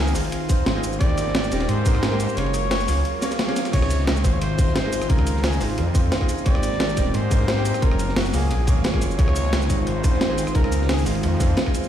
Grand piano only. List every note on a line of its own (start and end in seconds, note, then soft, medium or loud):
0.00 1.02 C3 medium
0.00 0.14 C4 loud
0.00 0.15 D#4 loud
0.00 0.16 F4 medium
0.00 0.16 G#4 loud
0.00 0.50 C5 loud
0.14 0.47 C4 medium
0.14 0.48 D#4 medium
0.14 0.48 F4 medium
0.14 0.48 G#4 medium
0.48 0.73 C4 loud
0.48 0.73 D#4 medium
0.48 0.74 F4 medium
0.48 0.74 C5 loud
0.75 0.98 C4 loud
0.75 0.98 D#4 medium
0.75 0.99 F4 medium
0.75 0.99 G#4 loud
0.99 1.49 A#3 loud
0.99 1.49 C4 medium
0.99 1.50 D#4 medium
0.99 1.51 G4 loud
1.51 1.83 A#3 medium
1.51 1.84 C4 medium
1.51 1.84 D#4 medium
1.51 1.85 G4 medium
1.85 2.09 A#3 loud
1.85 2.10 C4 medium
1.85 2.10 D#4 medium
1.85 2.10 A#4 loud
2.11 2.33 A#3 loud
2.11 2.35 C4 medium
2.11 2.35 D#4 medium
2.11 2.36 G4 loud
2.35 2.85 A#3 medium
2.35 2.86 C#4 medium
2.35 2.86 F4 medium
2.35 2.87 G#4 loud
2.87 3.20 A#3 medium
2.87 3.20 C#4 medium
2.87 3.21 F4 medium
2.87 3.21 G#4 medium
3.21 3.46 A#3 medium
3.21 3.46 C#4 medium
3.21 3.46 F4 medium
3.21 3.47 C#5 loud
3.47 3.71 A#3 loud
3.47 3.71 C#4 medium
3.47 3.72 F4 medium
3.47 3.72 G#4 loud
3.71 4.21 C3 medium
3.71 4.22 D#4 medium
3.71 4.23 F4 medium
3.71 4.23 G#4 loud
4.24 4.56 C4 medium
4.24 4.57 D#4 medium
4.24 4.57 F4 medium
4.24 4.57 G#4 medium
4.58 4.82 C4 medium
4.58 4.82 D#4 medium
4.58 4.83 F4 medium
4.58 4.83 C5 loud
4.84 5.06 C4 loud
4.84 5.07 D#4 medium
4.84 5.08 F4 medium
4.84 5.08 G#4 loud
5.08 5.58 C4 medium
5.08 5.59 D#4 medium
5.08 5.59 F4 medium
5.08 5.60 G#4 loud
5.60 5.92 C4 medium
5.60 5.93 D#4 medium
5.60 5.93 F4 medium
5.60 5.94 G#4 medium
5.94 6.18 C4 loud
5.94 6.19 D#4 medium
5.94 6.19 F4 medium
5.94 6.19 C5 loud
6.20 6.44 C4 loud
6.20 6.44 D#4 medium
6.20 6.44 F4 medium
6.20 6.45 G#4 loud
6.44 6.94 A#3 medium
6.44 6.95 C4 medium
6.44 6.96 D#4 medium
6.44 6.96 G4 loud
6.96 7.29 A#3 medium
6.96 7.29 C4 medium
6.96 7.30 D#4 medium
6.96 7.30 G4 medium
7.30 7.55 A#3 medium
7.30 7.55 C4 medium
7.30 7.55 D#4 medium
7.30 7.56 A#4 loud
7.56 7.79 A#3 loud
7.56 7.80 C4 medium
7.56 7.81 D#4 medium
7.56 7.81 G4 loud
7.80 8.31 A#3 medium
7.80 8.31 C#4 medium
7.80 8.32 F4 medium
7.80 8.33 G#4 loud
8.33 8.65 A#3 medium
8.33 8.66 C#4 medium
8.33 8.66 F4 medium
8.33 8.67 G#4 medium
8.67 8.91 A#3 loud
8.67 8.91 C#4 medium
8.67 8.92 F4 medium
8.67 8.92 C#5 loud
8.93 9.16 A#3 loud
8.93 9.17 C#4 medium
8.93 9.17 F4 medium
8.93 9.17 G#4 loud
9.17 9.67 C3 medium
9.17 9.68 D#4 medium
9.17 9.68 F4 medium
9.17 9.69 G#4 loud
9.69 10.02 C4 medium
9.69 10.02 D#4 medium
9.69 10.03 F4 medium
9.69 10.03 G#4 medium
10.03 10.27 C4 medium
10.03 10.28 D#4 medium
10.03 10.28 F4 medium
10.03 10.28 C5 loud
10.29 10.52 C4 loud
10.29 10.53 D#4 medium
10.29 10.53 F4 medium
10.29 10.54 G#4 loud
10.53 11.03 C4 medium
10.53 11.04 D#4 medium
10.53 11.05 F4 medium
10.53 11.05 G#4 loud
11.05 11.38 C4 medium
11.05 11.39 D#4 medium
11.05 11.39 F4 medium
11.05 11.39 G#4 medium
11.39 11.64 C4 medium
11.39 11.64 D#4 medium
11.39 11.64 F4 medium
11.39 11.65 C5 loud
11.66 11.88 C4 loud
11.66 11.88 D#4 medium
11.66 11.88 F4 medium
11.66 11.88 G#4 loud